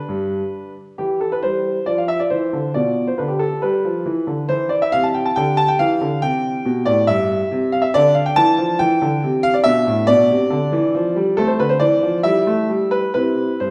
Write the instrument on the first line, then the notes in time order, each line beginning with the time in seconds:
grand piano
Already playing: D4 B4
0.09 G2
0.98 E3 E4 G4
1.21 A4
1.32 B4
1.43 G3 C5
1.86 F3 F4 D5
1.98 F5
2.08 E5
2.20 D5
2.30 E3 C5
2.53 D3
2.74 B2 F4 D5
3.07 C5
3.18 D3 B4
3.28 G4
3.39 A4
3.62 G3 B4
3.85 F3
4.06 E3
4.27 D3
4.49 E3 E4 C5
4.69 D5
4.82 E5
4.92 C3 F5
5.03 A5
5.14 G5
5.26 A5
5.36 D3 G4 G5
5.57 A5
5.68 G5
5.79 E3 F5
6.01 D3
6.22 C3 G4 G5
6.65 B2
6.86 A2 D5
7.07 G2 E5
7.51 C3
7.72 F5
7.82 E5
7.94 D3 D4 D5
8.15 F5
8.26 G5
8.36 E3 A5
8.58 F3
8.79 E3 G5
9.02 D3
9.24 C3
9.43 F5
9.54 D5
9.64 B2 D4 E5
9.87 A2
10.07 B2 D5
10.30 C3
10.50 D3
10.72 E3
10.95 F3
11.16 G3
11.37 A3 C4 A4
11.47 C5
11.59 D3 B4
11.69 C5
11.80 E3 D5
12.03 F3
12.23 G3 E4 E5
12.47 A3
12.69 G3
12.91 B4
13.14 C3 C4 E4 B4
13.60 G2 C5